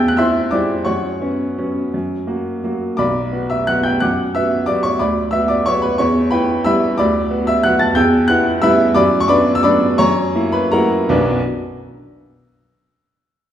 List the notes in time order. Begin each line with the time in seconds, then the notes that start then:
Already playing: E2 G5 E6 G6
0.08 F#6
0.17 C4 E4 E5 C6 E6
0.51 G3 C4 E4 D5 D6
0.85 F#2 C#5 F#5 C#6
1.21 B3 C#4
1.58 F#3 B3 C#4
1.94 F#2
2.27 A#3 F#4
2.64 F#3 A#3 F#4
2.97 B1 D5 B5 D6
3.32 B3 F#4
3.50 E5 E6
3.67 F#3 B3 F#4 F#5 F#6
3.83 G5 G6
4.00 F#2 F#5 D6 F#6
4.35 B3 F#4 E5 E6
4.66 F#3 B3 F#4 D5 D6
4.83 C#5 C#6
4.99 D2 D5 B5 D6
5.31 B3 F#4 E5 E6
5.48 D5 D6
5.66 F#3 B3 F#4 C#5 C#6
5.82 B4 B5
5.98 E2 C#5 C#6
6.31 B3 E4 B4 G5 B5
6.64 G3 B3 E4 E5 B5 E6
6.98 D2 D5 B5 D6
7.31 B3 F#4
7.47 E5 E6
7.63 F#3 B3 F#4 F#5 F#6
7.79 A5 A6
7.95 E2 G5 E6 G6
8.28 B3 E4 F#5 F#6
8.62 G3 B3 E4 E5 B5 E6
8.95 F#2 D5 B5 D6
9.20 C#6
9.28 B3 D4 D5 B5 D6
9.55 E6
9.63 F#3 B3 D4 D5 B5 D6
9.98 F#2 C#5 A#5 C#6
10.35 A#3 E4
10.52 B4 B5
10.71 F#3 A#3 E4 A#4 F#5 A#5
11.09 B1 F#2 F#3 B3 D4 F#4 D6